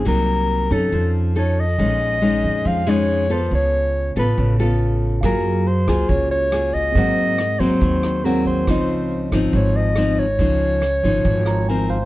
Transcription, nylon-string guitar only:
\new Staff \with { instrumentName = "Nylon-string guitar" } { \time 4/4 \key des \major \tempo 4 = 139 << { <ges bes ees'>4. <des' ees' a'>4. <cis' ees' a'>8 r8 | <aes des' ees'>4 <aes des' ees'>4. <aes des' ees'>4 <ces' f' a'>8~ | <ces' f' a'>4. <ces' f' a'>4 <ces' f' a'>4. | <bes f' aes'>4 r8 <bes f' aes'>4. <bes f' aes'>4 |
<ges bes c'>4 r8 <ges bes c'>4. <ges bes c'>4 | <f c' ees'>4. <f c' ees'>4. <f c' ees'>8 r8 | <f ees'>4 r8 <f ees'>4. <f c' ees'>8 r8 | } \\ { c2 f2 | bes,2 f2 | des2 des2 | ges2 des2 |
aes,2 ees2 | des2 aes,2 | des2 aes,2 | } >> }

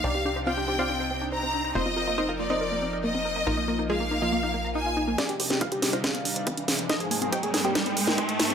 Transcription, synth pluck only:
\new Staff \with { instrumentName = "Synth pluck" } { \time 4/4 \key c \minor \tempo 4 = 140 <d' ees' g' d''>16 g'16 g'16 g'16 <f' c'' d'' f''>16 g'16 g'16 <f' c'' d'' f''>2 r16 | <c' ees' f' c''>16 f'16 f'16 f'16 <ees' bes' c'' ees''>16 f'16 f'16 <ees' bes' c'' ees''>2 r16 | <bes ees' f' bes'>16 bes16 bes16 bes16 <aes ees' f' aes'>16 bes16 bes16 <f bes f'>2 r16 | <d' ees' g' d''>16 g'16 g'16 g'16 <f' c'' d'' f''>16 g'16 g'16 <f' c'' d'' f''>2 r16 |
<ees' bes' c'' ees''>16 aes'16 aes'16 aes'16 <g' c'' ees'' g''>16 aes'16 aes'16 <g' c'' ees'' g''>2 r16 | }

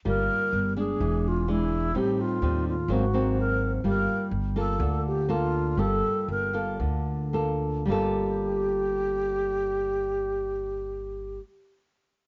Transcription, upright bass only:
\new Staff \with { instrumentName = "Upright bass" } { \clef bass \time 4/4 \key g \minor \tempo 4 = 121 g,,8 r8 g,,4 e,,2 | a,,8 r8 ees,4 aes,,2 | g,,8 r8 g,,4 d,2 | g,,8 r8 g,,4 d,2 |
g,,1~ | g,,1 | }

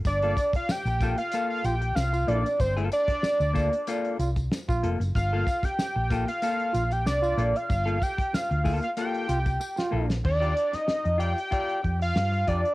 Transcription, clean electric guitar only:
\new Staff \with { instrumentName = "Clean electric guitar" } { \time 4/4 \key g \minor \tempo 4 = 94 r16 <bes f' a'>16 r4 <bes f' a'>16 r16 <bes f' a'>8 r4 <bes f' a'>16 r16 | r16 <bes f' a'>16 r4 <bes f' a'>16 r16 <bes f' a'>8 r4 <bes f' a'>16 r16 | r16 <bes f' a'>16 r4 <bes f' a'>16 r16 <bes f' a'>8 r4 <bes f' a'>16 r16 | r16 <bes f' a'>16 r4 <bes f' a'>16 r16 <bes f' a'>8 r4 <bes f' a'>16 r16 |
r16 <f' g' d''>16 r4 <f' g' d''>16 r16 <f' g' d''>8 r4 <f' g' d''>16 r16 | }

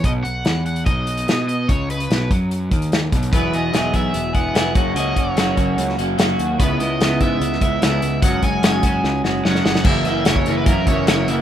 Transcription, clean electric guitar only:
\new Staff \with { instrumentName = "Clean electric guitar" } { \time 4/4 \key fis \mixolydian \tempo 4 = 147 b,8 b,8 e4 b,4 b4 | cis4 b,8 fis4 dis4 b,8 | <e fis b e' gis'>8 <b e' gis'>8 <e fis b e' gis'>8 <b e' gis'>4 <b e' gis'>8 <fis b e' gis'>8 <fis, cis fis ais cis' fis'>8 | <fis, cis fis ais cis' fis'>8 <fis ais cis' fis'>8 <fis, cis fis ais cis' fis'>8 <fis ais cis' fis'>4 <fis ais cis' fis'>8 <fis ais cis' fis'>4 |
<cis gis b e'>8 <gis b e'>8 <cis gis b e'>8 <gis b e'>4 <gis b e'>8 <cis gis b e'>4 | <fis gis cis' fis'>8 <gis cis' fis'>8 <fis gis cis' fis'>8 <gis cis' fis'>4 <gis cis' fis'>8 <fis gis cis' fis'>4 | <fis, cis e ais e'>8 <fis, cis e ais e'>8 <fis, cis e ais e'>8 <fis, cis e ais e'>8 <fis, cis e ais e'>8 <fis, cis e ais e'>8 <fis, cis e ais e'>8 <fis, cis e ais e'>8 | }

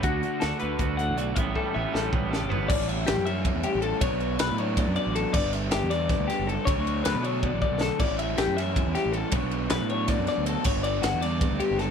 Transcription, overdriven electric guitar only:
\new Staff \with { instrumentName = "Overdriven electric guitar" } { \time 7/8 \key a \mixolydian \tempo 4 = 158 <d a d' fis'>8 <a d' fis'>8 <d a d' fis'>8 <a d' fis'>4 <a d' fis'>8 <d a d' fis'>8 | <a, e g cis' g'>8 <g cis' g'>8 <e g cis' g'>8 <g cis' g'>4 <g cis' g'>8 <a, e g cis' g'>8 | <a, e g cis' e'>4. <a, e g cis' e'>2 | <b, fis b d'>4. <b, fis b d'>2 |
<g, d g b d'>4. <g, d g b d'>2 | <d fis a d'>4. <d fis a d'>2 | <a, e g cis' e'>4. <a, e g cis' e'>2 | <b, fis b d'>4. <b, fis b d'>2 |
<g, d g b d'>4. <g, d g b d'>2 | }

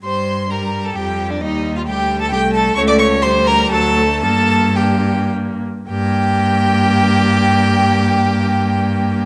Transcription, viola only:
\new Staff \with { instrumentName = "Viola" } { \clef bass \time 3/4 \key g \minor \tempo 4 = 114 g4 g4 g4 | g4 g4 a4 | a4 g4 fis8 a8 | bes4 bes4. r8 |
bes2.~ | bes2. | }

